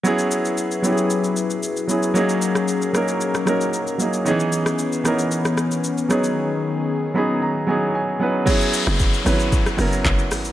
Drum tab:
CC |----------------|----------------|----------------|----------------|
HH |----------------|----------------|----------------|----------------|
SH |xxxxxxxxxxxxxxxx|xxxxxxxxxxxxxxxx|xxxxxxxxxxxxxxxx|----------------|
CP |----------------|----------------|----------------|----------------|
SD |----------------|---r--r--rr-----|---r--r--rr---r-|----------------|
BD |----------------|----------------|----------------|----------------|

CC |x---------------|
HH |--o---o---o---o-|
SH |xxxxxxxxxxxxxxxx|
CP |------------x---|
SD |---r--r--rr---r-|
BD |o---o---o---o---|